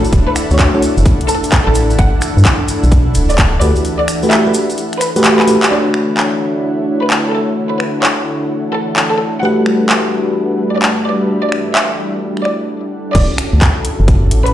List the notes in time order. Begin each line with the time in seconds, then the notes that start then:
Already playing: D4 E4 A4 F#5
0.05 closed hi-hat, shaker
0.12 D1, kick, closed hi-hat, shaker
0.28 B4
0.36 finger snap, closed hi-hat, shaker
0.51 D2 A3 D4 F#4 C#5, shaker
0.59 C#5, kick, clap, closed hi-hat, shaker
0.74 A3 D4 F#4 C#5
0.82 closed hi-hat, shaker
0.97 F#1, closed hi-hat, shaker
1.06 kick, closed hi-hat, shaker
1.21 closed hi-hat
1.28 A4, closed hi-hat, shaker
1.44 closed hi-hat, shaker
1.52 kick, clap, closed hi-hat, shaker
1.67 A1 A4
1.75 closed hi-hat, shaker
1.90 closed hi-hat, shaker
1.99 G1 F#5, kick, closed hi-hat
2.21 finger snap, closed hi-hat, shaker
2.37 G2, shaker
2.45 kick, clap, closed hi-hat, shaker
2.68 closed hi-hat, shaker
2.83 B1, closed hi-hat, shaker
2.92 kick, closed hi-hat, shaker
3.15 D1, closed hi-hat, shaker
3.29 D5, closed hi-hat, shaker
3.38 kick, clap, closed hi-hat
3.61 D2 A3 F#4 G4 B4 D5, closed hi-hat, shaker
3.76 closed hi-hat, shaker
3.85 closed hi-hat, shaker
4.00 D5
4.08 finger snap, closed hi-hat, shaker
4.23 A3 F#4 G4 B4, shaker
4.31 E5, clap, closed hi-hat, shaker
4.46 A3 F#4 G4 B4
4.54 closed hi-hat, shaker
4.70 closed hi-hat, shaker
4.78 closed hi-hat, shaker
4.93 finger snap, closed hi-hat
5.01 B4, finger snap, closed hi-hat, shaker
5.16 A3 F#4 G4 B4, closed hi-hat, shaker
5.24 clap, closed hi-hat, shaker
5.39 B4, clap
5.47 A3 F#4 G4 B4, closed hi-hat, shaker
5.63 clap, closed hi-hat, shaker
5.71 D3 A3 D4 E4 F#4 A4 C#5 D5 F#5
5.94 finger snap
6.17 clap
7.02 B4
7.10 clap
7.34 A4
7.72 B4
7.80 finger snap
8.03 C#5, clap
8.73 A4
8.96 clap
9.12 A4
9.43 G3 A3 D4 F#4 G4 B4 F#5
9.54 E4
9.66 finger snap
9.89 clap
10.74 D5
10.82 clap
11.06 D5
11.44 D5
11.52 finger snap
11.75 E5, clap
12.37 finger snap
12.45 D5, finger snap
13.15 D1 C#4 E4 F#4 A4 D5, kick, closed hi-hat, crash
13.22 A4
13.38 D6, finger snap, closed hi-hat
13.51 D2 F#5
13.61 kick, clap, closed hi-hat
13.85 closed hi-hat
14.00 F#1
14.08 kick, closed hi-hat
14.31 A1, closed hi-hat
14.46 B4, closed hi-hat